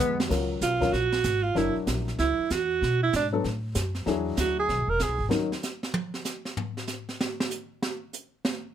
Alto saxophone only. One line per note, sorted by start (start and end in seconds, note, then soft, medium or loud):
0.00 0.20 G#3 medium
0.62 0.94 F4 medium
0.93 1.45 F#4 medium
1.43 1.59 F4 medium
1.57 1.77 E4 medium
2.19 2.53 E4 medium
2.52 3.02 F#4 medium
3.03 3.13 E4 medium
3.16 3.27 D4 medium
4.39 4.57 F#4 medium
4.59 4.91 G#4 medium
4.90 5.04 A#4 medium
5.02 5.27 G#4 medium